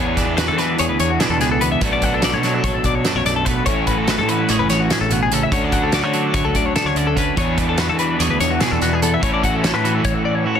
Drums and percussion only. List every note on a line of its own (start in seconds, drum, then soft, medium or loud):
0.17 kick medium
0.17 snare soft
0.17 closed hi-hat medium
0.38 snare medium
0.38 closed hi-hat medium
0.58 snare soft
0.58 closed hi-hat medium
0.79 closed hi-hat medium
0.99 closed hi-hat medium
1.20 snare medium
1.20 closed hi-hat medium
1.41 snare soft
1.41 closed hi-hat soft
1.61 closed hi-hat medium
1.81 kick loud
1.81 closed hi-hat medium
2.02 kick medium
2.02 closed hi-hat medium
2.22 snare loud
2.22 closed hi-hat medium
2.43 snare soft
2.43 closed hi-hat soft
2.64 kick medium
2.64 closed hi-hat medium
2.84 kick medium
2.84 closed hi-hat medium
3.05 snare medium
3.05 closed hi-hat medium
3.26 snare soft
3.26 closed hi-hat medium
3.46 kick medium
3.46 closed hi-hat medium
3.66 kick loud
3.66 closed hi-hat medium
3.87 kick medium
3.87 closed hi-hat medium
4.08 snare loud
4.08 closed hi-hat medium
4.29 closed hi-hat medium
4.49 snare soft
4.49 closed hi-hat medium
4.70 snare soft
4.70 closed hi-hat medium
4.90 snare loud
4.90 closed hi-hat medium
5.11 closed hi-hat medium
5.32 closed hi-hat medium
5.52 kick loud
5.52 closed hi-hat medium
5.72 kick medium
5.72 closed hi-hat medium
5.92 snare loud
5.92 closed hi-hat medium
6.14 closed hi-hat soft
6.34 kick loud
6.34 closed hi-hat medium
6.55 kick medium
6.55 closed hi-hat medium
6.76 snare medium
6.76 closed hi-hat medium
6.96 closed hi-hat medium
7.17 kick medium
7.17 closed hi-hat medium
7.37 kick loud
7.37 closed hi-hat medium
7.58 kick medium
7.58 closed hi-hat medium
7.78 snare loud
7.78 closed hi-hat medium
7.99 closed hi-hat medium
8.20 snare soft
8.20 closed hi-hat medium
8.40 snare soft
8.40 closed hi-hat medium
8.61 snare loud
8.61 closed hi-hat medium
8.82 snare soft
8.82 closed hi-hat medium
9.02 closed hi-hat medium
9.23 kick loud
9.23 closed hi-hat medium
9.43 kick medium
9.43 closed hi-hat medium
9.64 snare loud
9.64 closed hi-hat medium
9.85 closed hi-hat medium
10.05 kick medium
10.05 closed hi-hat medium